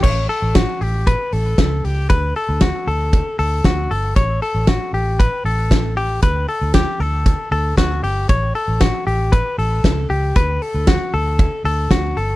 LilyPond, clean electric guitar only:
\new Staff \with { instrumentName = "Clean electric guitar" } { \time 4/4 \key a \mixolydian \tempo 4 = 116 cis''8 a'8 fis'8 g'8 b'8 a'4 g'8 | b'8 a'8 fis'8 a'4 a'8 fis'8 a'8 | cis''8 a'8 fis'8 g'8 b'8 a'4 g'8 | b'8 a'8 g'8 a'4 a'8 fis'8 g'8 |
cis''8 a'8 fis'8 g'8 b'8 a'4 g'8 | b'8 a'8 fis'8 a'4 a'8 fis'8 a'8 | }